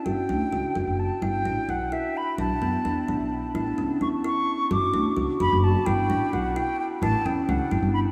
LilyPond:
<<
  \new Staff \with { instrumentName = "Flute" } { \time 5/8 \key e \dorian \tempo 4 = 129 g''2 a''8 | g''4 fis''8 e''8 b''8 | a''2 r8 | a''4 cis'''8 cis'''4 |
d'''4 r8 b''8 a''8 | g''4 fis''8 g''8 g''8 | a''8 g''8 fis''8 g''8 b''8 | }
  \new Staff \with { instrumentName = "Kalimba" } { \time 5/8 \key e \dorian fis'8 d'8 fis'8 fis'4 | e'8 d'8 e'8 e'4 | d'8 b8 d'8 d'4 | e'8 cis'8 e'8 e'4 |
fis'8 d'8 fis'8 fis'4 | e'8 d'8 e'8 e'4 | e'8 cis'8 e'8 e'4 | }
  \new Staff \with { instrumentName = "Upright bass" } { \clef bass \time 5/8 \key e \dorian g,,16 r16 d,16 r16 cis,16 r16 fis,,16 fis,,8 r16 | g,,8 a,,16 r16 b,,8 r4 | b,,16 r16 fis,16 r16 e,16 r16 a,,16 b,,8 r16 | a,,8 cis,16 r16 e,8 r4 |
g,,16 r16 d,16 r16 cis,16 r16 fis,,16 fis,,8 r16 | g,,8 a,,16 r16 b,,8 r4 | a,,16 r16 e,16 r16 cis,16 r16 g,,16 g,,8 r16 | }
>>